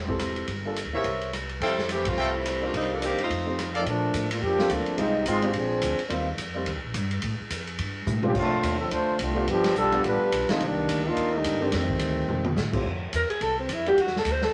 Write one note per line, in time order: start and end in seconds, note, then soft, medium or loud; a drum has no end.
0.00 0.45 E1 medium
0.00 0.14 G4 medium
0.00 0.14 A4 medium
0.00 0.14 C5 medium
0.00 0.14 E5 medium
0.08 0.46 C4 medium
0.08 0.46 E4 soft
0.08 0.46 G4 medium
0.08 0.47 A4 medium
0.08 kick soft
0.19 cross-stick medium
0.19 hi-hat pedal medium
0.19 ride medium
0.36 ride soft
0.48 0.83 G1 medium
0.48 kick soft
0.48 ride medium
0.65 0.76 A#3 medium
0.65 0.76 D4 soft
0.65 0.76 F4 soft
0.65 0.76 A4 medium
0.76 hi-hat pedal medium
0.76 ride medium
0.85 0.93 D2 medium
0.93 1.03 A#1 medium
0.93 1.03 A#3 medium
0.93 1.04 C#4 medium
0.93 1.04 E4 medium
0.93 1.05 G4 medium
0.93 1.31 A#4 medium
0.93 1.31 C5 medium
0.93 1.31 C#5 medium
0.93 1.31 E5 medium
1.04 1.58 C2 medium
1.04 kick soft
1.04 ride medium
1.21 ride soft
1.33 cross-stick medium
1.33 hi-hat pedal soft
1.33 ride medium
1.49 ride soft
1.60 2.14 F2 medium
1.60 1.88 G3 medium
1.60 1.88 C4 medium
1.60 1.88 E4 medium
1.60 1.72 A4 medium
1.60 1.88 A4 loud
1.60 1.72 E5 medium
1.60 1.72 F5 medium
1.60 1.72 G5 medium
1.60 kick soft
1.60 ride medium
1.78 snare soft
1.89 2.07 E3 medium
1.89 2.07 A3 medium
1.89 2.07 C4 loud
1.89 2.07 G4 loud
1.89 hi-hat pedal medium
1.89 ride medium
2.05 2.35 C4 medium
2.05 2.35 F4 medium
2.05 kick medium
2.05 ride medium
2.09 2.35 G3 medium
2.09 2.35 A3 medium
2.17 2.71 C2 medium
2.17 2.29 A4 medium
2.17 2.29 E5 medium
2.17 2.29 F5 medium
2.17 2.29 G5 medium
2.36 2.63 G3 medium
2.36 2.63 A3 medium
2.36 2.64 C4 medium
2.36 2.63 E4 medium
2.46 cross-stick medium
2.46 hi-hat pedal medium
2.46 ride medium
2.61 2.75 G3 medium
2.61 2.75 A3 medium
2.61 2.99 A#3 medium
2.61 2.99 D4 medium
2.61 2.99 D#4 soft
2.61 2.75 F4 medium
2.61 3.00 G4 medium
2.66 2.75 C4 medium
2.74 3.08 C2 medium
2.74 2.91 G3 medium
2.74 2.91 A#3 medium
2.74 2.91 C4 medium
2.74 2.91 D#4 medium
2.74 kick soft
2.74 ride medium
2.93 3.03 F3 medium
2.93 3.03 A#3 medium
2.93 3.03 D4 medium
2.93 3.04 A4 medium
3.01 3.16 A#3 medium
3.01 3.16 D4 medium
3.01 3.17 D#4 medium
3.01 3.17 G4 medium
3.01 hi-hat pedal medium
3.01 ride medium
3.06 3.19 D#3 medium
3.06 3.20 A#3 medium
3.06 3.19 C4 medium
3.06 3.19 G4 medium
3.12 3.20 G2 medium
3.18 3.29 D#2 medium
3.18 3.73 D#4 medium
3.18 ride soft
3.23 3.73 A3 medium
3.23 3.73 C4 medium
3.23 3.73 F4 medium
3.30 3.83 F2 medium
3.30 kick soft
3.30 ride medium
3.46 3.56 A3 medium
3.46 3.57 C4 soft
3.46 3.57 D#4 soft
3.46 3.57 G4 soft
3.59 cross-stick medium
3.59 hi-hat pedal medium
3.59 ride medium
3.74 3.86 F3 medium
3.74 3.86 A3 medium
3.74 3.86 C4 medium
3.74 3.86 D#4 medium
3.74 3.82 A4 medium
3.74 3.82 A#4 medium
3.74 3.83 D5 medium
3.74 3.82 F5 medium
3.74 ride soft
3.86 4.13 A#2 medium
3.86 4.29 F3 medium
3.86 4.28 A3 medium
3.86 4.28 A#3 medium
3.86 4.28 D4 medium
3.86 kick soft
3.86 ride medium
4.14 4.41 A2 medium
4.14 kick soft
4.14 hi-hat pedal medium
4.14 ride medium
4.31 4.42 A3 medium
4.31 4.42 A#3 medium
4.31 4.40 D4 medium
4.31 4.42 F4 medium
4.31 ride medium
4.41 4.69 F2 medium
4.41 4.69 F3 medium
4.41 4.69 A#3 medium
4.41 4.68 D4 medium
4.41 4.70 G4 loud
4.41 kick soft
4.59 4.96 A#3 medium
4.59 4.96 C4 medium
4.59 4.96 D4 medium
4.59 4.97 F4 medium
4.59 4.97 A4 medium
4.59 snare medium
4.70 4.86 D2 loud
4.70 4.98 F3 medium
4.70 4.98 A3 medium
4.70 4.98 A#3 medium
4.70 4.98 D4 medium
4.70 kick soft
4.70 hi-hat pedal medium
4.70 ride medium
4.86 muted upright bass stroke soft
4.86 ride soft
4.97 5.25 C2 medium
4.97 5.26 G3 medium
4.97 5.13 G#3 medium
4.97 5.25 G#3 medium
4.97 5.13 C4 medium
4.97 5.25 C4 medium
4.97 5.13 D#4 medium
4.97 5.25 D#4 loud
4.97 5.13 F4 medium
4.97 5.14 G4 medium
4.97 kick soft
4.97 ride medium
5.26 5.53 G#1 medium
5.26 5.47 G#3 medium
5.26 5.47 C4 medium
5.26 5.47 D#4 medium
5.26 5.47 F4 loud
5.26 kick soft
5.26 hi-hat pedal medium
5.26 ride medium
5.42 5.53 G#3 medium
5.42 5.53 C4 medium
5.42 5.53 D4 medium
5.42 5.53 F4 medium
5.42 5.54 G4 medium
5.42 ride soft
5.50 5.81 A#1 medium
5.50 5.99 C4 medium
5.50 5.55 G4 medium
5.50 kick soft
5.50 ride medium
5.54 5.99 F3 medium
5.54 5.99 D4 medium
5.54 5.99 G#4 loud
5.82 5.97 D2 loud
5.82 kick soft
5.82 hi-hat pedal medium
5.82 ride medium
5.98 muted upright bass stroke soft
5.98 ride soft
6.08 6.37 D#2 medium
6.08 6.25 G3 medium
6.08 6.25 A#3 medium
6.08 6.25 C4 medium
6.08 6.25 D#4 medium
6.08 6.26 F4 medium
6.08 kick soft
6.08 ride medium
6.37 6.65 F2 medium
6.37 kick soft
6.37 hi-hat pedal medium
6.37 ride medium
6.54 6.65 G3 medium
6.54 6.65 A#3 soft
6.54 6.66 C4 soft
6.54 6.66 D#4 soft
6.54 6.66 G4 medium
6.66 6.75 D#2 medium
6.66 kick soft
6.66 ride medium
6.75 6.83 C2 medium
6.84 6.93 A#1 medium
6.94 7.22 G2 loud
6.94 kick soft
6.94 hi-hat pedal medium
6.94 ride medium
7.11 ride soft
7.22 7.38 A2 medium
7.22 kick soft
7.22 ride medium
7.40 muted upright bass stroke soft
7.50 7.78 F2 medium
7.50 kick soft
7.50 hi-hat pedal medium
7.50 ride medium
7.67 ride soft
7.78 8.06 G2 medium
7.78 kick soft
7.78 ride medium
8.06 8.34 A2 medium
8.06 hi-hat pedal medium
8.06 mid tom soft
8.22 8.33 F3 medium
8.22 8.35 F3 medium
8.22 8.34 A3 soft
8.22 8.34 C4 medium
8.22 8.35 C4 medium
8.22 8.35 C#4 medium
8.22 8.34 D4 medium
8.22 8.34 F4 medium
8.22 8.35 G4 medium
8.22 mid tom medium
8.35 8.62 F2 medium
8.35 8.78 A3 medium
8.35 8.77 C4 medium
8.35 8.77 D4 medium
8.35 8.77 F4 loud
8.35 kick medium
8.35 crash medium
8.63 8.90 D#2 medium
8.63 kick soft
8.63 hi-hat pedal medium
8.63 ride medium
8.79 8.90 F3 medium
8.79 8.91 C4 medium
8.79 8.89 D4 medium
8.79 8.91 A4 medium
8.90 9.19 D2 medium
8.90 9.18 A3 medium
8.90 9.18 D4 medium
8.90 9.19 F4 medium
8.90 9.19 C5 loud
8.90 kick soft
8.90 ride medium
9.19 9.47 C2 medium
9.19 9.46 A3 medium
9.19 9.46 C4 medium
9.19 9.45 D4 medium
9.19 9.46 F4 medium
9.19 kick soft
9.19 hi-hat pedal medium
9.19 ride medium
9.34 9.45 F3 medium
9.34 9.46 A3 medium
9.34 9.46 B3 medium
9.34 9.46 D4 medium
9.34 9.47 G4 medium
9.47 9.75 G1 medium
9.47 9.76 F3 medium
9.47 9.76 B3 medium
9.47 9.75 D4 medium
9.47 9.76 G4 loud
9.47 kick soft
9.47 ride medium
9.64 snare soft
9.64 ride medium
9.75 10.03 B1 medium
9.75 10.03 G3 medium
9.75 10.03 D4 medium
9.75 10.02 F4 medium
9.75 10.03 A4 loud
9.75 kick soft
9.75 hi-hat pedal medium
9.92 10.29 F3 medium
9.92 10.30 A3 medium
9.92 10.30 B3 medium
9.92 10.30 D4 medium
9.92 10.30 G4 medium
9.92 ride soft
10.03 10.19 A1 medium
10.03 10.47 G3 medium
10.03 10.47 D4 medium
10.03 10.47 F4 medium
10.03 10.47 B4 loud
10.03 kick soft
10.03 ride medium
10.21 muted upright bass stroke soft
10.32 10.48 B1 medium
10.32 kick soft
10.32 hi-hat pedal medium
10.32 ride medium
10.49 10.59 D#3 medium
10.49 10.61 F3 medium
10.49 10.61 A3 medium
10.49 10.60 A#3 medium
10.49 10.60 C4 medium
10.49 10.61 C4 medium
10.49 10.60 D4 medium
10.49 10.61 D#4 medium
10.49 10.60 F4 medium
10.49 muted upright bass stroke soft
10.49 snare medium
10.49 ride soft
10.60 10.88 C2 medium
10.60 11.06 D#3 medium
10.60 11.07 G3 medium
10.60 11.06 A#3 medium
10.60 11.06 D4 loud
10.60 kick soft
10.60 ride medium
10.88 11.16 D2 medium
10.88 kick soft
10.88 hi-hat pedal soft
10.88 ride medium
11.07 11.34 A#3 medium
11.07 11.34 D4 medium
11.07 11.34 D#4 medium
11.07 11.34 F4 medium
11.16 11.44 D#2 medium
11.16 kick soft
11.16 ride medium
11.35 11.63 D3 medium
11.35 11.61 G3 medium
11.35 11.61 A#3 medium
11.35 11.62 D#4 medium
11.44 11.72 G2 medium
11.44 kick soft
11.44 hi-hat pedal medium
11.44 ride medium
11.61 11.71 D#3 medium
11.61 11.73 D#3 medium
11.61 11.73 G3 medium
11.61 11.72 A3 medium
11.61 11.73 A#3 medium
11.61 11.72 C4 medium
11.61 11.72 D4 medium
11.61 11.73 D4 medium
11.61 11.72 G4 medium
11.72 12.00 F2 medium
11.72 12.58 D#3 medium
11.72 12.58 G3 medium
11.72 12.58 A3 medium
11.72 12.58 C4 medium
11.72 kick soft
11.72 snare soft
11.72 ride medium
11.89 kick medium
11.99 12.28 D2 medium
11.99 kick soft
11.99 hi-hat pedal medium
11.99 ride medium
12.28 12.56 F2 medium
12.28 mid tom soft
12.45 high tom medium
12.56 12.84 A2 medium
12.56 snare medium
12.56 hi-hat pedal medium
12.72 12.83 F3 medium
12.72 12.83 A3 soft
12.72 12.84 C4 soft
12.72 12.84 E4 medium
12.72 12.84 G4 medium
12.72 kick medium
12.72 crash medium
12.85 13.12 F2 medium
12.85 kick soft
13.13 13.28 E2 medium
13.13 13.29 A#4 medium
13.13 kick soft
13.13 hi-hat pedal medium
13.13 ride medium
13.30 13.44 G#4 medium
13.30 muted upright bass stroke soft
13.30 ride soft
13.41 13.68 C2 medium
13.41 13.59 A4 loud
13.41 kick soft
13.41 ride medium
13.59 13.74 C4 medium
13.69 13.96 F2 medium
13.69 13.87 E4 medium
13.69 kick soft
13.69 hi-hat pedal medium
13.69 ride medium
13.86 13.96 G3 medium
13.86 13.97 A#3 medium
13.86 13.97 D4 medium
13.86 13.97 E4 soft
13.86 13.97 F#4 medium
13.86 14.02 G4 loud
13.86 ride soft
13.97 14.24 E2 medium
13.97 kick soft
13.97 ride medium
14.01 14.16 F#4 medium
14.07 snare soft
14.16 14.33 A4 medium
14.16 snare soft
14.25 14.52 D2 medium
14.25 kick soft
14.25 hi-hat pedal medium
14.25 ride medium
14.32 14.45 C5 medium
14.42 14.53 A4 medium
14.42 snare soft